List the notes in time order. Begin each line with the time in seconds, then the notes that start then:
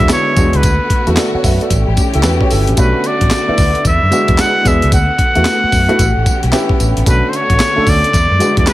Already playing: D3 G#3 B3 D4 E4 F#4 E5
0.00 E2
0.09 C#5, snare, clap, closed hi-hat, tambourine
0.36 E2 G#3 B3 D4 F#4, kick, closed hi-hat, tambourine
0.53 C#2 B4, closed hi-hat
0.63 D2 A3 B3 F#4, kick, closed hi-hat, tambourine
0.90 kick, closed hi-hat
1.07 E2 A3 B3 E4 F#4, closed hi-hat
1.16 A4 D5, snare, clap, closed hi-hat, tambourine
1.34 C#5 F#5, muted fingered electric bass stroke
1.44 F#2 B4 E5, kick, open hi-hat, tambourine
1.61 A4 D5, closed hi-hat
1.70 A1 E3 C#4 G4, kick, closed hi-hat, tambourine
1.88 A1
1.97 C#4 G4, kick, closed hi-hat, tambourine
2.14 C#2 E4 A4, closed hi-hat
2.23 E2 F#4 B4, snare, clap, closed hi-hat, tambourine
2.41 G4 C#5, kick
2.50 G1 E4 A4, open hi-hat, tambourine
2.67 A1 C#4 G4, closed hi-hat
2.77 B1 D3 A3 B3 C#4 D4 F#4 B4, kick, closed hi-hat, tambourine
3.04 D5, closed hi-hat
3.21 A1, kick, closed hi-hat
3.30 snare, clap, closed hi-hat, tambourine
3.47 A3 B3 D4 E4, muted fingered electric bass stroke
3.58 D2, kick, open hi-hat, tambourine
3.75 closed hi-hat
3.84 E2 G#3 E4 E5, kick, closed hi-hat, tambourine
4.03 F#2
4.11 G#3 B3 D4 F#4, closed hi-hat, tambourine
4.28 E2, kick, closed hi-hat
4.38 F#5, snare, clap, closed hi-hat, tambourine
4.64 E2 G#3 B3 D4 G#4 E5, kick, closed hi-hat, tambourine
4.82 C#2, closed hi-hat
4.91 D2 A3 F#4 F#5, kick, closed hi-hat, tambourine
5.19 kick, closed hi-hat
5.35 E2 A3 B3 E4 F#4, closed hi-hat
5.45 snare, clap, closed hi-hat, tambourine
5.64 muted fingered electric bass stroke
5.72 F#2, kick, open hi-hat, tambourine
5.89 A3 B3 E4 F#4, closed hi-hat
5.98 A1 E3 C#4 G4, kick, closed hi-hat, tambourine
6.17 A1
6.26 kick, closed hi-hat, tambourine
6.43 B1, closed hi-hat
6.52 B3 C#4 E4 G4, snare, clap, closed hi-hat, tambourine
6.69 kick
6.80 A1, closed hi-hat, tambourine
6.97 A1, closed hi-hat
7.06 B1 D3 A3 B3 C#4 D4 F#4 B4, kick, closed hi-hat, tambourine
7.29 C5
7.33 C#5, closed hi-hat
7.50 A1, kick, closed hi-hat
7.59 snare, clap, closed hi-hat, tambourine
7.76 A3 C#4 D4 A4, muted fingered electric bass stroke
7.87 D2 D5, kick, open hi-hat, tambourine
8.04 closed hi-hat
8.13 E2 G#3 E4, kick, closed hi-hat, tambourine
8.31 F#2
8.40 G#3 B3 D4 F#4, closed hi-hat, tambourine
8.57 E2 D5, kick, closed hi-hat
8.66 B4, snare, clap, closed hi-hat, tambourine